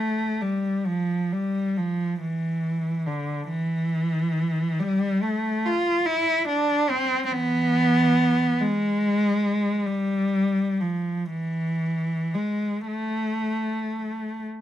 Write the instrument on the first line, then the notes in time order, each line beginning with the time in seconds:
cello
Already playing: A3
0.42 G3
0.87 F3
1.32 G3
1.77 F3
2.21 E3
3.07 D3
3.49 E3
4.80 G3
5.23 A3
5.66 F4
6.06 E4
6.48 D4
6.90 C4
7.25 C4
7.32 E3 B3
8.60 G#3
9.86 G3
10.81 F3
11.31 E3
12.35 G#3
12.87 A3